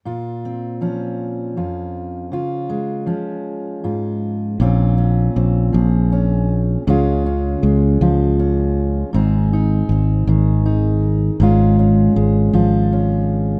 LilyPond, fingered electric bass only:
\new Staff \with { instrumentName = "Fingered electric bass" } { \clef bass \time 6/8 \key des \major \tempo 4. = 53 r2. | r2. | bes,,4 bes,,8 bes,,4. | des,4 des,8 des,4. |
aes,,4 aes,,8 aes,,4. | aes,,4 aes,,8 aes,,4. | }